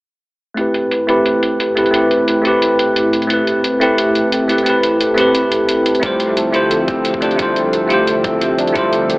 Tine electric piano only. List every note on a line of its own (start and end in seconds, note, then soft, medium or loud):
0.54 1.05 A3 medium
0.54 1.06 C4 medium
0.54 1.07 E4 medium
0.59 1.08 G4 medium
0.59 1.08 B4 medium
1.07 1.17 A3 medium
1.07 1.18 C4 medium
1.07 1.18 E4 medium
1.07 1.18 G4 medium
1.07 1.19 B4 loud
1.75 1.85 A3 medium
1.75 1.86 C4 medium
1.75 1.86 E4 medium
1.75 1.87 G4 medium
1.75 1.87 B4 medium
1.91 2.41 A3 medium
1.91 2.42 C4 medium
1.91 2.43 E4 medium
1.96 2.44 G4 medium
1.96 2.45 B4 medium
2.42 3.26 A3 medium
2.42 3.28 C4 medium
2.42 3.28 E4 medium
2.47 3.29 G4 medium
2.47 3.30 B4 medium
3.27 3.78 A3 medium
3.27 3.79 C4 medium
3.27 3.79 E4 medium
3.32 3.80 G4 medium
3.32 3.81 B4 medium
3.80 3.90 A3 medium
3.80 3.90 C4 medium
3.80 3.91 E4 medium
3.80 3.91 G4 medium
3.80 3.92 B4 loud
4.48 4.58 A3 medium
4.48 4.59 C4 medium
4.48 4.59 E4 medium
4.48 4.59 G4 medium
4.48 4.60 B4 medium
4.63 5.13 A3 medium
4.63 5.15 C4 medium
4.63 5.16 E4 medium
4.68 5.17 G4 medium
4.68 5.17 B4 medium
5.14 5.99 A3 medium
5.14 6.00 C4 medium
5.14 6.00 E4 medium
5.19 6.02 G4 medium
5.19 6.03 B4 medium
6.00 6.51 A3 medium
6.00 6.51 E4 medium
6.00 6.52 F4 medium
6.05 6.53 G4 medium
6.05 6.54 C5 medium
6.52 6.63 A3 medium
6.52 6.63 E4 medium
6.52 6.63 F4 medium
6.52 6.64 G4 medium
6.52 6.64 C5 loud
7.21 7.31 A3 medium
7.21 7.31 E4 medium
7.21 7.32 F4 medium
7.21 7.32 G4 medium
7.21 7.33 C5 medium
7.36 7.86 A3 medium
7.36 7.88 E4 medium
7.36 7.89 F4 medium
7.41 7.89 G4 medium
7.41 7.90 C5 medium
7.87 8.71 A3 medium
7.87 8.73 E4 medium
7.87 8.74 F4 medium
7.92 8.75 G4 medium
7.92 8.75 C5 loud
8.72 9.18 A3 medium
8.72 9.18 E4 medium
8.72 9.18 F4 medium
8.77 9.18 G4 medium
8.77 9.18 C5 medium